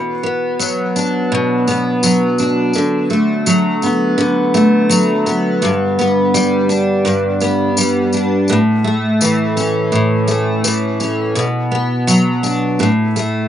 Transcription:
Already playing: steel-string acoustic guitar B2
0.23 steel-string acoustic guitar B3
0.59 steel-string acoustic guitar F#3, tambourine
0.96 steel-string acoustic guitar D4, tambourine
1.32 steel-string acoustic guitar B2
1.67 steel-string acoustic guitar B3, tambourine
2.03 steel-string acoustic guitar F#3, tambourine
2.38 steel-string acoustic guitar D4, tambourine
2.73 steel-string acoustic guitar D3, tambourine
3.10 steel-string acoustic guitar A3, tambourine
3.46 steel-string acoustic guitar F#3, tambourine
3.82 steel-string acoustic guitar B3, tambourine
4.18 steel-string acoustic guitar D3, tambourine
4.54 steel-string acoustic guitar A3, tambourine
4.89 steel-string acoustic guitar F#3, tambourine
5.26 steel-string acoustic guitar B3, tambourine
5.62 steel-string acoustic guitar G2, tambourine
5.99 steel-string acoustic guitar B3, tambourine
6.34 steel-string acoustic guitar G3, tambourine
6.69 steel-string acoustic guitar D4, tambourine
7.05 steel-string acoustic guitar G2, tambourine
7.40 steel-string acoustic guitar B3, tambourine
7.77 steel-string acoustic guitar G3, tambourine
8.13 steel-string acoustic guitar D4, tambourine
8.48 steel-string acoustic guitar A2, tambourine
8.84 steel-string acoustic guitar A3
9.21 steel-string acoustic guitar E3, tambourine
9.57 steel-string acoustic guitar C#4, tambourine
9.92 steel-string acoustic guitar A2, tambourine
10.28 steel-string acoustic guitar A3, tambourine
10.64 steel-string acoustic guitar E3, tambourine
11.00 steel-string acoustic guitar C#4, tambourine
11.35 steel-string acoustic guitar B2, tambourine
11.71 steel-string acoustic guitar B3
12.07 steel-string acoustic guitar F#3, tambourine
12.43 steel-string acoustic guitar D4, tambourine
12.79 steel-string acoustic guitar A2, tambourine
13.16 steel-string acoustic guitar A3, tambourine

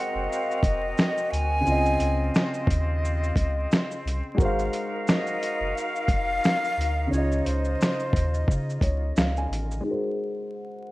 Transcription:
Already playing: upright piano G#3 F#4 A#4 C5 D#5, flute section C4 F#4 A#4 D#5, flute F#5
0.15 sub bass F#1
0.30 flute F5, shaker
0.51 shaker
0.63 sub bass F1, flute D#5, kick, closed hi-hat, shaker
0.98 finger snap, snare, shaker
1.17 shaker
1.31 sub bass D2, flute G#5, closed hi-hat, shaker
1.61 upright piano C#3
1.65 sub bass C#2, upright piano C4 F4, flute section C4 F4 D#5, shaker
1.72 upright piano D#5
1.86 shaker
2.00 sub bass C#2, closed hi-hat, shaker
2.35 finger snap, snare, shaker
2.54 shaker
2.67 sub bass D#2, kick, closed hi-hat, shaker
3.05 shaker
3.24 shaker
3.36 sub bass C#2, kick, closed hi-hat, shaker
3.72 finger snap, snare, shaker
3.91 shaker
4.05 sub bass C2, closed hi-hat, shaker
4.35 sub bass G#1, upright piano G#3 F#4, kick
4.40 flute section D#4 F#4 A#4 F5, upright piano A#4 C5, shaker
4.45 upright piano F5
4.59 shaker
4.73 closed hi-hat, shaker
5.08 flute D#5, finger snap, snare, shaker
5.27 shaker
5.43 closed hi-hat, shaker
5.60 sub bass F#1
5.76 flute F5, shaker
5.96 shaker
6.08 sub bass F1, kick, closed hi-hat, shaker
6.44 finger snap, snare, shaker
6.65 shaker
6.77 sub bass D2, closed hi-hat, shaker
7.07 upright piano C#3 C#4
7.11 sub bass C#2, flute section F4 D#5, upright piano F4, flute C#5, shaker
7.18 upright piano D#5
7.32 shaker
7.45 sub bass C#2, flute C5, closed hi-hat, shaker
7.65 shaker
7.81 finger snap, snare, shaker
8.00 shaker
8.13 sub bass D#2, kick, closed hi-hat, shaker
8.34 shaker
8.48 sub bass C#3, kick, shaker
8.70 shaker
8.81 sub bass C#2, upright piano C#5, kick, closed hi-hat, shaker
9.16 sub bass C#2, upright piano F5, finger snap, snare, shaker
9.37 upright piano G#5, shaker
9.50 sub bass A1, closed hi-hat, shaker
9.71 shaker
9.81 upright piano G#3 D#4
9.85 upright piano F#4 G#4
9.90 upright piano A#4 C5
10.53 flute F#5

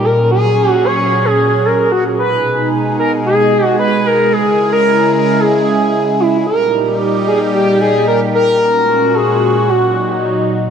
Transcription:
Already playing: analog synth pad A#2
0.04 analog synth pad F#3 C#4 G#4, analog synth lead A#4
0.31 analog synth lead G#4
0.70 analog synth lead F#4
0.85 analog synth lead C#5
1.25 analog synth lead G#4
1.65 analog synth lead A#4
1.92 analog synth lead F#4
2.18 analog synth pad B2 G#3 D#4 G#4, analog synth lead B4
2.99 analog synth lead A#4
3.26 analog synth lead G#4
3.79 analog synth lead B4
4.06 analog synth lead A#4
4.32 analog synth pad C#3 E4, analog synth lead G#4
4.73 analog synth lead A#4
5.13 analog synth lead A#4
5.40 analog synth lead G#4
6.20 analog synth lead E4
6.47 analog synth pad A#2 G3 D#4 G4, analog synth lead A#4
7.27 analog synth lead G#4
7.54 analog synth lead G4
7.81 analog synth lead G#4
8.08 analog synth lead A#4
8.35 analog synth lead A#4
8.61 analog synth pad A#2 G#3 C#4 F#4
9.15 analog synth lead G#4
9.69 analog synth pad F#3 D#4, analog synth lead F#4

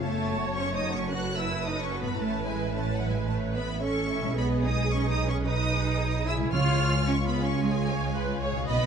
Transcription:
Already playing: harp F#2 A3 C#4 F#4
0.00 double bass section F#1, cello section A3, violin section A4 C#5 A5, viola section C#5
0.28 violin section F#4 A4
0.56 cello section C#4, violin section A4 C#5 C#6
0.74 cello section D#4, violin section D#6
0.84 violin section F#4 A4
0.92 cello section C#4, violin section C#6
1.10 cello section F#4, violin section A4 C#5 F#6, viola section B4
1.37 cello section E4, violin section F#4 A4 E6
1.63 cello section D#4, violin section A4 C#5 D#6
1.82 cello section C#4, violin section C#6
1.92 violin section F#4 A4
2.01 harp A2, cello section B3, violin section B5
2.05 harp A3
2.10 harp C#4
2.14 harp E4
2.19 double bass section A1, cello section A3, violin section C#4 C#5 A5
2.46 cello section G#3, violin section E4 E5 G#5
2.73 cello section A3, violin section C#4 C#5 A5
2.93 cello section F#3, violin section F#5
3.00 violin section E4 E5
3.10 cello section G#3, violin section G#5
3.27 cello section A3, violin section C#4 C#5 A5
3.55 cello section B3, violin section E4 E5 B5
3.81 violin section C#4 C#5 C#6, cello section C#4, viola section A4
4.08 violin section E4 E5
4.18 harp B2
4.23 harp G#3
4.27 harp D#4
4.32 harp G#4
4.36 double bass section B1, cello section B3, viola section G#4, violin section B4 D#5 B5
4.63 cello section D#4, violin section G#4 B4 D#6
4.91 cello section C#4, violin section B4 D#5 C#6
5.09 cello section D#4, violin section D#6
5.19 violin section G#4 B4
5.27 cello section C#4, violin section C#6
5.45 cello section D#4, viola section B4, violin section B4 D#5 D#6
5.72 violin section G#4 B4
5.98 viola section G#4, violin section B4 D#5
6.26 cello section E4, violin section G#4 B4 E6, viola section G#4
6.35 harp C#3
6.39 harp G#3
6.44 harp C#4
6.48 harp G#4
6.53 double bass section C#2, timpani C#3, violin section F4 C#5 F6, cello section F4, viola section C#5
6.81 violin section G#4 F5
7.07 cello section C#4, viola section F4, violin section F4 C#5 C#6
7.25 cello section B3, violin section B5
7.34 violin section G#4 F5
7.43 cello section C#4, violin section C#6
7.61 cello section G#3, violin section F4 C#5 G#5, viola section G#4
7.88 violin section G#4 F5, viola section C#5
8.14 violin section F4 C#5, viola section B4
8.41 violin section G#4 F5, viola section C#5
8.51 harp B2
8.56 harp D#4
8.61 harp F#4
8.65 harp B4, violin section B4 D#5, viola section D#5
8.69 double bass section B1, cello section B3, violin section B5

